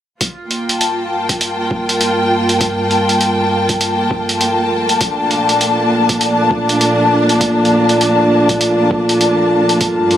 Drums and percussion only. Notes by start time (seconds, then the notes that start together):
0.21 kick, closed hi-hat
0.51 closed hi-hat
0.69 closed hi-hat
0.81 closed hi-hat
1.29 kick, closed hi-hat
1.41 closed hi-hat
1.71 kick
1.89 closed hi-hat
2.01 closed hi-hat
2.49 closed hi-hat
2.61 kick, closed hi-hat
2.91 closed hi-hat
3.09 closed hi-hat
3.21 closed hi-hat
3.69 kick, closed hi-hat
3.81 closed hi-hat
4.11 kick
4.29 closed hi-hat
4.41 closed hi-hat
4.89 closed hi-hat
5.01 kick, closed hi-hat
5.31 closed hi-hat
5.49 closed hi-hat
5.61 closed hi-hat
6.09 kick, closed hi-hat
6.21 closed hi-hat
6.51 kick
6.69 closed hi-hat
6.81 closed hi-hat
7.29 closed hi-hat
7.41 kick, closed hi-hat
7.65 closed hi-hat
7.89 closed hi-hat
8.01 closed hi-hat
8.49 kick, closed hi-hat
8.61 closed hi-hat
8.91 kick
9.09 closed hi-hat
9.21 closed hi-hat
9.69 closed hi-hat
9.81 kick, closed hi-hat
10.11 closed hi-hat